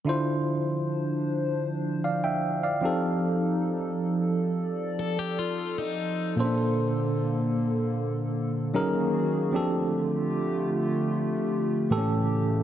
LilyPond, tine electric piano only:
\new Staff \with { instrumentName = "Tine electric piano" } { \time 4/4 \key d \minor \tempo 4 = 76 << { r2 r8 <d'' f''>16 <e'' g''>8 <d'' f''>8 r16 | r1 | r1 | r1 | } \\ { <d d' e' f' c''>2.~ <d d' e' f' c''>8 <f c' ees' g' a'>8~ | <f c' ees' g' a'>2.~ <f c' ees' g' a'>8 r8 | <bes, bes cis' d' a' c''>2. <fis cis' dis' gis' ais'>4 | <f c' d' g' a'>2. <a, e bes cis' g' a'>4 | } >> }